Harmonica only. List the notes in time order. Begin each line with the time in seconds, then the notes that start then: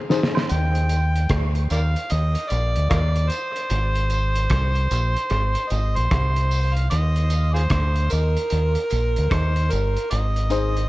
0.51 G5
1.72 A#4 D5 F5
2.12 D#5
2.50 D5
2.90 F4 A#4 D5
3.29 C5
5.70 D#5
5.96 C5
6.74 F5
6.90 D#5
7.54 F4 G#4 C5
8.11 A#4
9.31 C5
9.71 A#4
10.10 D#5